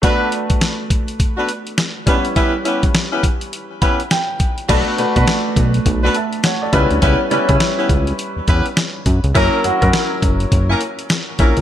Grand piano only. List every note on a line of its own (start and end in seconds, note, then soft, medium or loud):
0.02 2.02 A3 medium
0.02 2.03 D4 medium
0.02 2.03 F#4 medium
0.02 2.04 B4 medium
2.06 4.36 G3 medium
2.06 4.36 C#4 medium
2.06 2.15 D4 medium
2.06 4.37 B4 medium
2.14 4.40 E4 medium
3.82 4.09 B5 medium
4.11 4.65 G5 medium
4.69 4.92 A3 medium
4.69 4.92 D4 medium
4.69 4.93 F#4 medium
4.69 4.93 B4 medium
4.98 5.11 A3 medium
4.98 5.11 D4 medium
4.98 5.12 F#4 medium
4.98 5.12 B4 medium
5.15 6.03 A3 medium
5.15 6.03 D4 medium
5.15 6.03 F#4 medium
5.15 6.03 B4 medium
6.15 6.43 E5 soft
6.15 6.43 A5 medium
6.44 6.61 C#5 medium
6.44 6.61 F#5 medium
6.62 6.90 A4 medium
6.62 6.89 D5 medium
6.73 7.22 G3 medium
6.73 7.22 C#4 medium
6.73 7.22 E4 medium
6.73 7.22 B4 loud
7.31 7.44 G3 medium
7.31 7.44 C#4 medium
7.31 7.45 E4 medium
7.31 7.45 B4 medium
7.48 8.35 G3 medium
7.48 8.36 C#4 medium
7.48 8.36 E4 medium
7.48 8.36 B4 medium
9.34 9.58 F#3 medium
9.34 9.58 C#4 medium
9.34 9.59 E4 medium
9.34 9.59 A#4 medium
9.64 9.77 F#3 medium
9.64 9.77 C#4 medium
9.64 9.78 E4 medium
9.64 9.78 F#4 medium
9.81 10.69 F#3 medium
9.81 10.69 C#4 medium
9.81 10.69 E4 medium
9.81 10.69 A#4 medium